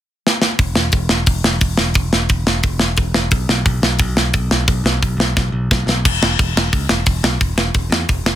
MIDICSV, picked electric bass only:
0, 0, Header, 1, 2, 480
1, 0, Start_track
1, 0, Tempo, 340909
1, 825, Time_signature, 4, 2, 24, 8
1, 11762, End_track
2, 0, Start_track
2, 0, Title_t, "Picked electric bass"
2, 0, Program_c, 0, 34
2, 837, Note_on_c, 0, 28, 77
2, 1049, Note_off_c, 0, 28, 0
2, 1057, Note_on_c, 0, 28, 82
2, 1294, Note_off_c, 0, 28, 0
2, 1305, Note_on_c, 0, 28, 76
2, 1539, Note_off_c, 0, 28, 0
2, 1548, Note_on_c, 0, 28, 80
2, 1773, Note_off_c, 0, 28, 0
2, 1782, Note_on_c, 0, 28, 87
2, 2017, Note_off_c, 0, 28, 0
2, 2029, Note_on_c, 0, 28, 81
2, 2261, Note_off_c, 0, 28, 0
2, 2267, Note_on_c, 0, 28, 78
2, 2500, Note_off_c, 0, 28, 0
2, 2514, Note_on_c, 0, 28, 80
2, 2743, Note_off_c, 0, 28, 0
2, 2755, Note_on_c, 0, 28, 79
2, 2984, Note_off_c, 0, 28, 0
2, 2994, Note_on_c, 0, 28, 79
2, 3223, Note_off_c, 0, 28, 0
2, 3232, Note_on_c, 0, 28, 78
2, 3463, Note_off_c, 0, 28, 0
2, 3471, Note_on_c, 0, 28, 81
2, 3702, Note_off_c, 0, 28, 0
2, 3713, Note_on_c, 0, 28, 92
2, 3943, Note_off_c, 0, 28, 0
2, 3952, Note_on_c, 0, 28, 79
2, 4183, Note_off_c, 0, 28, 0
2, 4189, Note_on_c, 0, 28, 84
2, 4421, Note_off_c, 0, 28, 0
2, 4428, Note_on_c, 0, 28, 76
2, 4660, Note_off_c, 0, 28, 0
2, 4671, Note_on_c, 0, 35, 78
2, 4902, Note_off_c, 0, 35, 0
2, 4912, Note_on_c, 0, 35, 79
2, 5142, Note_off_c, 0, 35, 0
2, 5149, Note_on_c, 0, 35, 80
2, 5372, Note_off_c, 0, 35, 0
2, 5380, Note_on_c, 0, 35, 78
2, 5616, Note_off_c, 0, 35, 0
2, 5626, Note_on_c, 0, 35, 87
2, 5859, Note_off_c, 0, 35, 0
2, 5878, Note_on_c, 0, 35, 77
2, 6100, Note_off_c, 0, 35, 0
2, 6109, Note_on_c, 0, 35, 84
2, 6340, Note_off_c, 0, 35, 0
2, 6355, Note_on_c, 0, 35, 77
2, 6584, Note_off_c, 0, 35, 0
2, 6590, Note_on_c, 0, 35, 75
2, 6804, Note_off_c, 0, 35, 0
2, 6812, Note_on_c, 0, 35, 85
2, 7052, Note_off_c, 0, 35, 0
2, 7076, Note_on_c, 0, 35, 78
2, 7269, Note_off_c, 0, 35, 0
2, 7278, Note_on_c, 0, 35, 86
2, 7524, Note_off_c, 0, 35, 0
2, 7561, Note_on_c, 0, 35, 82
2, 7768, Note_off_c, 0, 35, 0
2, 7776, Note_on_c, 0, 35, 78
2, 8013, Note_off_c, 0, 35, 0
2, 8036, Note_on_c, 0, 35, 80
2, 8245, Note_off_c, 0, 35, 0
2, 8253, Note_on_c, 0, 35, 74
2, 8491, Note_off_c, 0, 35, 0
2, 8515, Note_on_c, 0, 28, 87
2, 8695, Note_off_c, 0, 28, 0
2, 8751, Note_on_c, 0, 28, 88
2, 8933, Note_off_c, 0, 28, 0
2, 8998, Note_on_c, 0, 28, 81
2, 9177, Note_off_c, 0, 28, 0
2, 9234, Note_on_c, 0, 28, 78
2, 9414, Note_off_c, 0, 28, 0
2, 9473, Note_on_c, 0, 37, 86
2, 9653, Note_off_c, 0, 37, 0
2, 9709, Note_on_c, 0, 28, 78
2, 9891, Note_off_c, 0, 28, 0
2, 9947, Note_on_c, 0, 28, 83
2, 10130, Note_off_c, 0, 28, 0
2, 10183, Note_on_c, 0, 35, 77
2, 10367, Note_off_c, 0, 35, 0
2, 10431, Note_on_c, 0, 28, 80
2, 10612, Note_off_c, 0, 28, 0
2, 10639, Note_on_c, 0, 28, 86
2, 10832, Note_off_c, 0, 28, 0
2, 10907, Note_on_c, 0, 28, 80
2, 11089, Note_off_c, 0, 28, 0
2, 11119, Note_on_c, 0, 40, 81
2, 11311, Note_off_c, 0, 40, 0
2, 11389, Note_on_c, 0, 28, 91
2, 11570, Note_off_c, 0, 28, 0
2, 11597, Note_on_c, 0, 28, 80
2, 11762, Note_off_c, 0, 28, 0
2, 11762, End_track
0, 0, End_of_file